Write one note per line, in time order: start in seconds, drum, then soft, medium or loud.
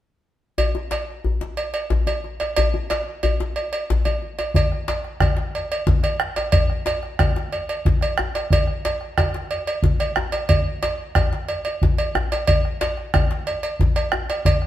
0.58 cowbell soft
0.58 djembe bass medium
0.75 djembe slap soft
0.75 djembe tone soft
0.91 cowbell soft
0.91 djembe slap medium
1.25 djembe bass medium
1.41 djembe slap soft
1.41 djembe tone soft
1.57 cowbell soft
1.74 cowbell soft
1.90 djembe slap medium
1.90 djembe bass medium
2.07 cowbell soft
2.07 djembe tone soft
2.24 djembe slap soft
2.40 cowbell soft
2.40 djembe slap soft
2.56 cowbell medium
2.56 djembe bass medium
2.74 djembe slap soft
2.74 djembe tone medium
2.90 cowbell soft
2.90 djembe slap medium
3.23 cowbell soft
3.23 djembe bass medium
3.40 djembe slap medium
3.40 djembe tone medium
3.56 cowbell soft
3.73 cowbell soft
3.90 djembe slap medium
3.90 djembe bass medium
4.05 cowbell soft
4.05 djembe tone soft
4.22 djembe slap soft
4.39 cowbell soft
4.39 djembe slap soft
4.54 bombo low medium
4.54 cowbell soft
4.54 djembe slap soft
4.54 djembe bass medium
4.72 bombo rim soft
4.88 cowbell soft
4.88 djembe slap medium
5.04 bombo rim soft
5.20 bombo rim medium
5.20 bombo low medium
5.20 cowbell soft
5.20 djembe tone medium
5.20 djembe bass medium
5.37 djembe slap medium
5.55 cowbell soft
5.72 cowbell soft
5.87 bombo low medium
5.87 djembe slap medium
5.87 djembe bass medium
6.03 bombo rim soft
6.03 cowbell soft
6.20 bombo rim medium
6.36 cowbell soft
6.36 djembe slap medium
6.52 bombo low loud
6.52 cowbell medium
6.52 djembe slap soft
6.52 djembe bass medium
6.70 bombo rim soft
6.86 cowbell soft
6.86 djembe slap medium
7.03 bombo rim soft
7.19 bombo rim medium
7.19 bombo low medium
7.19 cowbell soft
7.19 djembe tone medium
7.19 djembe bass medium
7.36 djembe slap medium
7.53 cowbell soft
7.69 cowbell soft
7.85 bombo low medium
7.85 djembe slap medium
7.85 djembe bass medium
8.01 bombo rim soft
8.01 cowbell soft
8.18 bombo rim medium
8.18 djembe tone medium
8.35 cowbell soft
8.35 djembe slap medium
8.50 bombo low medium
8.50 cowbell medium
8.50 djembe slap soft
8.50 djembe bass medium
8.67 bombo rim soft
8.85 cowbell soft
8.85 djembe slap medium
9.01 bombo rim soft
9.18 bombo rim medium
9.18 bombo low medium
9.18 cowbell soft
9.18 djembe tone medium
9.34 djembe slap soft
9.51 cowbell soft
9.67 cowbell soft
9.83 bombo low medium
9.83 djembe slap medium
9.83 djembe bass medium
10.00 bombo rim soft
10.00 cowbell soft
10.16 bombo rim medium
10.16 djembe tone medium
10.32 cowbell soft
10.32 djembe slap soft
10.49 bombo low medium
10.49 cowbell medium
10.49 djembe bass soft
10.83 cowbell soft
10.83 djembe slap medium
11.15 bombo rim medium
11.15 bombo low medium
11.15 cowbell soft
11.15 djembe tone medium
11.15 djembe bass medium
11.33 djembe slap soft
11.49 cowbell soft
11.49 djembe slap soft
11.65 cowbell soft
11.65 djembe slap soft
11.82 bombo low medium
11.82 djembe slap medium
11.82 djembe bass medium
11.98 cowbell soft
12.15 bombo rim medium
12.15 djembe slap soft
12.15 djembe tone medium
12.32 cowbell soft
12.32 djembe slap medium
12.47 bombo low medium
12.47 cowbell medium
12.47 djembe slap soft
12.47 djembe bass medium
12.65 bombo rim soft
12.81 cowbell soft
12.81 djembe slap medium
12.97 bombo rim soft
13.14 bombo rim medium
13.14 bombo low medium
13.14 cowbell soft
13.14 djembe tone medium
13.14 djembe bass medium
13.31 djembe slap medium
13.47 cowbell soft
13.63 cowbell soft
13.79 bombo low medium
13.79 djembe slap medium
13.79 djembe bass medium
13.96 bombo rim soft
13.96 cowbell soft
14.12 bombo rim medium
14.12 djembe tone medium
14.30 cowbell soft
14.30 djembe slap soft
14.45 bombo low medium
14.45 cowbell medium
14.45 djembe slap soft
14.45 djembe bass medium
14.62 bombo rim soft